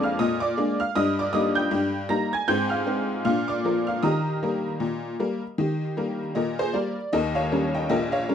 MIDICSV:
0, 0, Header, 1, 2, 480
1, 0, Start_track
1, 0, Key_signature, -3, "major"
1, 0, Tempo, 771208
1, 598, Time_signature, 2, 2, 24, 8
1, 5196, End_track
2, 0, Start_track
2, 0, Title_t, "Honky-tonk piano"
2, 0, Program_c, 0, 3
2, 0, Control_c, 0, 64, 127
2, 0, Note_on_c, 0, 41, 105
2, 0, Note_on_c, 0, 56, 54
2, 0, Note_on_c, 0, 58, 58
2, 0, Note_on_c, 0, 62, 63
2, 0, Note_on_c, 0, 74, 64
2, 0, Note_on_c, 0, 86, 84
2, 21, Note_on_c, 0, 89, 81
2, 31, Note_on_c, 0, 77, 63
2, 119, Note_off_c, 0, 77, 0
2, 119, Note_on_c, 0, 87, 93
2, 121, Note_off_c, 0, 89, 0
2, 121, Note_on_c, 0, 46, 87
2, 126, Control_c, 0, 64, 0
2, 128, Note_on_c, 0, 75, 73
2, 131, Note_off_c, 0, 41, 0
2, 131, Note_off_c, 0, 56, 0
2, 133, Note_off_c, 0, 58, 0
2, 133, Note_off_c, 0, 74, 0
2, 133, Note_off_c, 0, 86, 0
2, 134, Note_off_c, 0, 62, 0
2, 251, Note_on_c, 0, 86, 88
2, 254, Note_off_c, 0, 75, 0
2, 259, Note_off_c, 0, 87, 0
2, 261, Note_on_c, 0, 74, 66
2, 324, Note_off_c, 0, 46, 0
2, 356, Note_on_c, 0, 56, 55
2, 359, Note_on_c, 0, 58, 58
2, 360, Note_on_c, 0, 62, 61
2, 482, Note_off_c, 0, 74, 0
2, 488, Note_off_c, 0, 56, 0
2, 490, Note_off_c, 0, 58, 0
2, 491, Note_off_c, 0, 62, 0
2, 494, Note_off_c, 0, 86, 0
2, 497, Note_on_c, 0, 89, 93
2, 503, Note_on_c, 0, 77, 68
2, 593, Note_off_c, 0, 77, 0
2, 594, Note_on_c, 0, 87, 105
2, 597, Note_off_c, 0, 89, 0
2, 597, Note_on_c, 0, 43, 92
2, 601, Note_on_c, 0, 75, 80
2, 727, Control_c, 0, 64, 127
2, 729, Note_off_c, 0, 75, 0
2, 735, Note_off_c, 0, 87, 0
2, 742, Note_on_c, 0, 86, 74
2, 748, Note_on_c, 0, 74, 59
2, 800, Note_off_c, 0, 43, 0
2, 827, Note_on_c, 0, 87, 90
2, 831, Note_on_c, 0, 55, 55
2, 834, Note_on_c, 0, 58, 52
2, 835, Note_off_c, 0, 74, 0
2, 835, Note_on_c, 0, 75, 73
2, 836, Note_on_c, 0, 63, 60
2, 839, Note_off_c, 0, 86, 0
2, 963, Note_off_c, 0, 55, 0
2, 965, Note_off_c, 0, 75, 0
2, 966, Note_off_c, 0, 58, 0
2, 967, Note_off_c, 0, 63, 0
2, 967, Note_on_c, 0, 91, 89
2, 971, Note_off_c, 0, 87, 0
2, 976, Note_on_c, 0, 79, 67
2, 1065, Note_on_c, 0, 43, 83
2, 1083, Control_c, 0, 64, 0
2, 1272, Note_off_c, 0, 43, 0
2, 1290, Note_off_c, 0, 79, 0
2, 1301, Note_on_c, 0, 94, 93
2, 1303, Note_on_c, 0, 55, 51
2, 1306, Note_on_c, 0, 58, 46
2, 1309, Note_off_c, 0, 91, 0
2, 1309, Note_on_c, 0, 63, 56
2, 1309, Note_on_c, 0, 82, 69
2, 1437, Note_off_c, 0, 55, 0
2, 1439, Note_off_c, 0, 58, 0
2, 1440, Note_off_c, 0, 82, 0
2, 1442, Note_off_c, 0, 63, 0
2, 1447, Note_off_c, 0, 94, 0
2, 1450, Note_on_c, 0, 92, 88
2, 1458, Note_on_c, 0, 80, 64
2, 1543, Note_on_c, 0, 91, 99
2, 1545, Note_on_c, 0, 44, 98
2, 1548, Note_off_c, 0, 80, 0
2, 1549, Note_on_c, 0, 79, 77
2, 1551, Note_off_c, 0, 92, 0
2, 1556, Note_on_c, 0, 60, 54
2, 1659, Control_c, 0, 64, 127
2, 1678, Note_on_c, 0, 89, 80
2, 1680, Note_off_c, 0, 79, 0
2, 1686, Note_off_c, 0, 60, 0
2, 1687, Note_off_c, 0, 91, 0
2, 1687, Note_on_c, 0, 77, 58
2, 1751, Note_off_c, 0, 44, 0
2, 1782, Note_on_c, 0, 56, 46
2, 1785, Note_on_c, 0, 60, 48
2, 1787, Note_on_c, 0, 63, 47
2, 1917, Note_off_c, 0, 56, 0
2, 1918, Note_off_c, 0, 60, 0
2, 1920, Note_off_c, 0, 63, 0
2, 2005, Note_off_c, 0, 77, 0
2, 2012, Note_off_c, 0, 89, 0
2, 2021, Note_on_c, 0, 89, 83
2, 2022, Note_on_c, 0, 46, 83
2, 2028, Note_on_c, 0, 77, 66
2, 2036, Note_on_c, 0, 62, 52
2, 2039, Control_c, 0, 64, 0
2, 2149, Control_c, 0, 64, 127
2, 2160, Note_off_c, 0, 77, 0
2, 2166, Note_on_c, 0, 86, 72
2, 2167, Note_off_c, 0, 62, 0
2, 2167, Note_off_c, 0, 89, 0
2, 2174, Note_on_c, 0, 74, 57
2, 2231, Note_off_c, 0, 46, 0
2, 2270, Note_on_c, 0, 53, 44
2, 2274, Note_on_c, 0, 58, 39
2, 2275, Note_on_c, 0, 70, 49
2, 2397, Note_off_c, 0, 74, 0
2, 2403, Note_off_c, 0, 53, 0
2, 2406, Note_off_c, 0, 58, 0
2, 2407, Note_off_c, 0, 70, 0
2, 2408, Note_on_c, 0, 89, 74
2, 2409, Note_off_c, 0, 86, 0
2, 2417, Note_on_c, 0, 77, 55
2, 2506, Note_on_c, 0, 87, 77
2, 2508, Note_off_c, 0, 77, 0
2, 2509, Note_on_c, 0, 51, 84
2, 2511, Note_off_c, 0, 89, 0
2, 2514, Note_on_c, 0, 75, 57
2, 2514, Note_on_c, 0, 82, 59
2, 2520, Control_c, 0, 64, 0
2, 2521, Note_on_c, 0, 67, 55
2, 2626, Control_c, 0, 64, 127
2, 2651, Note_off_c, 0, 67, 0
2, 2716, Note_off_c, 0, 51, 0
2, 2755, Note_on_c, 0, 55, 43
2, 2755, Note_on_c, 0, 58, 44
2, 2761, Note_on_c, 0, 70, 47
2, 2888, Note_off_c, 0, 55, 0
2, 2888, Note_off_c, 0, 58, 0
2, 2892, Note_off_c, 0, 70, 0
2, 2987, Note_on_c, 0, 46, 67
2, 3004, Control_c, 0, 64, 0
2, 3196, Note_off_c, 0, 46, 0
2, 3234, Note_on_c, 0, 55, 45
2, 3235, Note_on_c, 0, 58, 39
2, 3238, Note_on_c, 0, 70, 50
2, 3367, Note_off_c, 0, 55, 0
2, 3369, Note_off_c, 0, 58, 0
2, 3370, Note_off_c, 0, 70, 0
2, 3474, Note_on_c, 0, 51, 74
2, 3488, Note_on_c, 0, 67, 46
2, 3600, Control_c, 0, 64, 127
2, 3618, Note_off_c, 0, 67, 0
2, 3681, Note_off_c, 0, 51, 0
2, 3715, Note_on_c, 0, 55, 44
2, 3718, Note_on_c, 0, 58, 41
2, 3720, Note_on_c, 0, 70, 46
2, 3849, Note_off_c, 0, 55, 0
2, 3851, Note_off_c, 0, 58, 0
2, 3853, Note_off_c, 0, 70, 0
2, 3943, Note_off_c, 0, 75, 0
2, 3953, Note_on_c, 0, 75, 75
2, 3956, Note_on_c, 0, 46, 63
2, 3962, Note_on_c, 0, 70, 60
2, 3970, Control_c, 0, 64, 0
2, 4092, Note_off_c, 0, 70, 0
2, 4098, Note_off_c, 0, 75, 0
2, 4103, Note_on_c, 0, 72, 70
2, 4110, Note_on_c, 0, 68, 52
2, 4163, Note_off_c, 0, 46, 0
2, 4178, Note_off_c, 0, 82, 0
2, 4192, Note_on_c, 0, 74, 65
2, 4195, Note_on_c, 0, 55, 40
2, 4196, Note_on_c, 0, 58, 42
2, 4199, Note_off_c, 0, 87, 0
2, 4199, Note_on_c, 0, 70, 49
2, 4200, Note_off_c, 0, 68, 0
2, 4203, Note_off_c, 0, 72, 0
2, 4330, Note_off_c, 0, 55, 0
2, 4330, Note_off_c, 0, 58, 0
2, 4333, Note_off_c, 0, 70, 0
2, 4436, Note_on_c, 0, 75, 100
2, 4438, Note_off_c, 0, 74, 0
2, 4438, Note_on_c, 0, 39, 78
2, 4438, Note_on_c, 0, 51, 83
2, 4444, Note_on_c, 0, 70, 73
2, 4554, Control_c, 0, 64, 127
2, 4574, Note_off_c, 0, 70, 0
2, 4575, Note_on_c, 0, 77, 80
2, 4579, Note_off_c, 0, 75, 0
2, 4581, Note_on_c, 0, 73, 60
2, 4644, Note_off_c, 0, 39, 0
2, 4644, Note_off_c, 0, 51, 0
2, 4680, Note_on_c, 0, 55, 49
2, 4681, Note_on_c, 0, 61, 45
2, 4682, Note_on_c, 0, 70, 47
2, 4805, Note_off_c, 0, 73, 0
2, 4813, Note_off_c, 0, 55, 0
2, 4814, Note_off_c, 0, 61, 0
2, 4814, Note_off_c, 0, 70, 0
2, 4819, Note_off_c, 0, 77, 0
2, 4821, Note_on_c, 0, 79, 77
2, 4827, Note_on_c, 0, 75, 59
2, 4904, Note_off_c, 0, 75, 0
2, 4913, Note_on_c, 0, 75, 87
2, 4914, Note_on_c, 0, 46, 71
2, 4915, Note_on_c, 0, 34, 74
2, 4921, Note_on_c, 0, 70, 62
2, 4922, Note_off_c, 0, 79, 0
2, 4931, Control_c, 0, 64, 0
2, 5052, Note_off_c, 0, 70, 0
2, 5055, Note_on_c, 0, 77, 85
2, 5058, Note_off_c, 0, 75, 0
2, 5060, Note_on_c, 0, 73, 60
2, 5122, Note_off_c, 0, 34, 0
2, 5122, Note_off_c, 0, 46, 0
2, 5158, Note_on_c, 0, 55, 43
2, 5162, Note_on_c, 0, 61, 49
2, 5162, Note_on_c, 0, 70, 50
2, 5196, Note_off_c, 0, 55, 0
2, 5196, Note_off_c, 0, 61, 0
2, 5196, Note_off_c, 0, 70, 0
2, 5196, Note_off_c, 0, 73, 0
2, 5196, Note_off_c, 0, 77, 0
2, 5196, End_track
0, 0, End_of_file